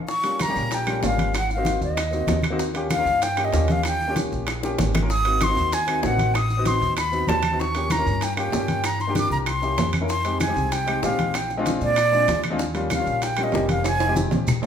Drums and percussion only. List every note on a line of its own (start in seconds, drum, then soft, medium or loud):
0.09 high bongo medium
0.09 high conga soft
0.09 maracas medium
0.24 high conga soft
0.24 high timbale medium
0.24 maracas soft
0.39 high bongo medium
0.39 high conga medium
0.39 high timbale medium
0.39 low timbale medium
0.39 claves medium
0.39 maracas medium
0.56 high conga soft
0.56 maracas soft
0.71 high bongo medium
0.71 high conga soft
0.71 high timbale medium
0.71 maracas medium
0.87 high conga soft
0.87 high timbale medium
0.87 claves medium
0.87 maracas soft
1.03 high bongo medium
1.03 low bongo medium
1.03 high conga soft
1.03 low timbale medium
1.03 maracas medium
1.18 high conga medium
1.18 high timbale medium
1.18 maracas soft
1.34 high bongo medium
1.34 high conga soft
1.34 high timbale medium
1.34 claves medium
1.34 maracas medium
1.50 high bongo soft
1.50 high conga soft
1.50 maracas soft
1.65 high bongo medium
1.65 high conga medium
1.65 high timbale medium
1.65 low timbale medium
1.65 maracas medium
1.81 high bongo soft
1.81 high conga soft
1.81 maracas soft
1.97 high bongo medium
1.97 high conga soft
1.97 high timbale medium
1.97 claves medium
1.97 maracas medium
2.13 high bongo soft
2.13 high conga soft
2.13 maracas soft
2.27 high bongo medium
2.27 low bongo medium
2.27 high conga medium
2.27 high timbale medium
2.27 low timbale medium
2.27 maracas medium
2.43 high conga medium
2.43 high timbale medium
2.43 claves medium
2.43 maracas soft
2.59 high bongo medium
2.59 high conga soft
2.59 maracas medium
2.75 high conga soft
2.75 high timbale medium
2.75 maracas soft
2.90 high bongo medium
2.90 high conga medium
2.90 high timbale medium
2.90 low timbale medium
2.90 claves medium
2.90 maracas medium
3.06 high conga soft
3.06 maracas soft
3.22 high bongo medium
3.22 high conga soft
3.22 high timbale medium
3.22 maracas medium
3.37 high conga soft
3.37 high timbale medium
3.37 claves medium
3.37 maracas soft
3.52 high bongo medium
3.52 low bongo medium
3.52 high conga soft
3.52 low timbale medium
3.52 maracas medium
3.68 high conga medium
3.68 high timbale medium
3.68 maracas soft
3.83 high bongo medium
3.83 high timbale medium
3.83 claves medium
3.83 maracas medium
4.01 high bongo soft
4.01 high conga soft
4.01 maracas soft
4.16 high bongo medium
4.16 high conga medium
4.16 high timbale medium
4.16 low timbale medium
4.16 maracas medium
4.32 high bongo soft
4.32 high conga soft
4.32 maracas soft
4.47 high bongo medium
4.47 high conga soft
4.47 high timbale medium
4.47 claves medium
4.47 maracas medium
4.63 high bongo medium
4.63 high conga soft
4.63 maracas soft
4.78 high bongo medium
4.78 high conga medium
4.78 high timbale medium
4.78 low timbale medium
4.78 maracas medium
4.95 low bongo medium
4.95 high conga medium
4.95 high timbale medium
4.95 claves medium
4.95 maracas soft
5.10 high bongo medium
5.10 high conga soft
5.10 maracas medium
5.25 high conga soft
5.25 high timbale medium
5.25 maracas soft
5.41 high bongo medium
5.41 high conga medium
5.41 high timbale medium
5.41 low timbale medium
5.41 claves medium
5.41 maracas medium
5.57 high conga soft
5.57 maracas soft
5.72 high bongo medium
5.72 high conga soft
5.72 high timbale medium
5.72 maracas medium
5.88 high conga soft
5.88 high timbale medium
5.88 claves medium
5.88 maracas soft
6.03 high bongo medium
6.03 low bongo medium
6.03 high conga soft
6.03 low timbale medium
6.03 maracas medium
6.18 high conga medium
6.18 high timbale medium
6.18 maracas soft
6.34 high bongo medium
6.34 high conga soft
6.34 high timbale medium
6.34 claves medium
6.34 maracas medium
6.50 high bongo soft
6.50 high conga soft
6.50 maracas soft
6.65 high bongo medium
6.65 high conga medium
6.65 high timbale medium
6.65 low timbale medium
6.65 maracas medium
6.82 high bongo soft
6.82 high conga soft
6.82 maracas soft
6.97 high bongo medium
6.97 high conga soft
6.97 high timbale medium
6.97 claves medium
6.97 maracas medium
7.12 high bongo soft
7.12 high conga soft
7.12 maracas soft
7.27 high bongo medium
7.27 low bongo medium
7.27 high conga medium
7.27 high timbale medium
7.27 low timbale medium
7.27 maracas medium
7.43 high conga medium
7.43 high timbale medium
7.43 claves medium
7.43 maracas soft
7.60 high bongo medium
7.60 high conga soft
7.60 maracas medium
7.75 high conga soft
7.75 high timbale medium
7.75 maracas soft
7.90 high bongo medium
7.90 high conga medium
7.90 high timbale medium
7.90 low timbale medium
7.90 claves medium
7.90 maracas medium
8.06 high conga soft
8.06 maracas soft
8.21 high bongo medium
8.21 high conga soft
8.21 high timbale medium
8.21 maracas medium
8.37 high conga soft
8.37 high timbale medium
8.37 claves medium
8.37 maracas soft
8.52 high bongo medium
8.52 low bongo medium
8.52 high conga soft
8.52 low timbale medium
8.52 maracas medium
8.68 high conga medium
8.68 high timbale medium
8.68 maracas soft
8.84 high bongo medium
8.84 high conga soft
8.84 high timbale medium
8.84 claves medium
8.84 maracas medium
9.00 high bongo soft
9.00 high conga soft
9.00 maracas soft
9.15 high bongo medium
9.15 high conga medium
9.15 high timbale medium
9.15 low timbale medium
9.15 maracas medium
9.30 high bongo soft
9.30 high conga soft
9.30 maracas soft
9.46 high bongo medium
9.46 high conga soft
9.46 high timbale medium
9.46 claves medium
9.46 maracas medium
9.63 high bongo soft
9.63 high conga soft
9.63 maracas soft
9.78 high bongo medium
9.78 low bongo medium
9.78 high conga medium
9.78 high timbale medium
9.78 low timbale medium
9.78 maracas medium
9.93 high conga medium
9.93 high timbale medium
9.93 claves medium
9.93 maracas soft
10.09 high bongo medium
10.09 high conga soft
10.09 maracas medium
10.25 high timbale medium
10.25 maracas soft
10.40 high bongo medium
10.40 high conga medium
10.40 high timbale medium
10.40 low timbale medium
10.40 claves medium
10.40 maracas medium
10.56 high conga soft
10.56 maracas soft
10.72 high bongo medium
10.72 high conga soft
10.72 high timbale medium
10.72 maracas medium
10.87 high conga soft
10.87 high timbale medium
10.87 claves medium
10.87 maracas soft
11.03 high bongo medium
11.03 low bongo medium
11.03 high conga soft
11.03 low timbale medium
11.03 maracas medium
11.19 high conga medium
11.19 high timbale medium
11.19 maracas soft
11.34 high bongo medium
11.34 high conga soft
11.34 high timbale medium
11.34 claves medium
11.34 maracas medium
11.50 high bongo soft
11.50 high conga soft
11.50 maracas soft
11.66 high bongo medium
11.66 high conga medium
11.66 high timbale medium
11.66 low timbale medium
11.66 maracas medium
11.81 high bongo soft
11.81 high conga soft
11.81 maracas soft
11.96 high bongo medium
11.96 high conga soft
11.96 high timbale medium
11.96 claves medium
11.96 maracas medium
12.13 high bongo soft
12.13 high conga soft
12.13 maracas soft
12.28 high bongo medium
12.28 low bongo medium
12.28 high conga medium
12.28 high timbale medium
12.28 low timbale medium
12.28 maracas medium
12.44 high conga medium
12.44 high timbale medium
12.44 claves medium
12.44 maracas soft
12.59 high bongo medium
12.59 high conga soft
12.59 maracas medium
12.75 high timbale medium
12.75 maracas soft
12.90 high bongo medium
12.90 high conga medium
12.90 high timbale medium
12.90 low timbale medium
12.90 claves medium
12.90 maracas medium
13.07 high conga soft
13.07 maracas soft
13.22 high bongo medium
13.22 high conga soft
13.22 high timbale medium
13.22 maracas medium
13.37 high conga soft
13.37 high timbale medium
13.37 claves medium
13.37 maracas soft
13.52 high bongo medium
13.52 low bongo medium
13.52 high conga soft
13.52 low timbale medium
13.52 maracas medium
13.69 high conga medium
13.69 high timbale medium
13.69 maracas soft
13.84 high bongo medium
13.84 high timbale medium
13.84 claves medium
13.84 maracas medium
14.00 high bongo soft
14.00 high conga soft
14.00 high timbale medium
14.00 maracas soft
14.16 high bongo medium
14.16 high conga medium
14.16 high timbale medium
14.16 maracas medium
14.31 high bongo soft
14.31 high conga medium
14.31 low timbale medium
14.31 maracas soft
14.47 high bongo medium
14.47 low conga medium
14.47 claves medium
14.47 maracas medium
14.63 low timbale medium